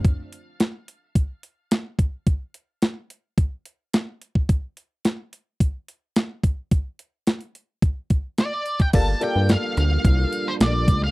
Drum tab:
CC |----------------|----------------|----------------|----------------|
HH |x-x-x-x-x-x-x-x-|x-x-x-x-x-x-x-x-|x-x-x-x-x-x-x-x-|x-x-xxx-x-x-x-xx|
SD |----o-------o---|----o-------o---|----o-------o---|----o-------o---|
BD |o-------o-----o-|o-------o------o|o-------o-----o-|o-------o-o----o|

CC |x---------------|
HH |x-x-x-x-x-x-x-x-|
SD |----o-------o---|
BD |o-------o-----o-|